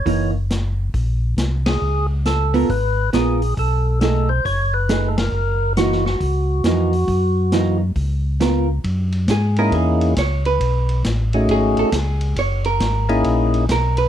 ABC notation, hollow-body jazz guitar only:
X:1
M:4/4
L:1/8
Q:"Swing" 1/4=136
K:F#mix
V:1 name="Hollow-body jazz guitar"
[E,A,D] z6 z | z3 [B,^EA] z2 [B,EA] z | z2 [=A,DG] z3 [A,DG] z | z2 [E,A,D] z3 [E,A,D] z |
z2 [E,A,D] z3 [B,^EA] z | z2 G A G2 c B- | B2 z2 G =A G2 | c A3 z2 A B |]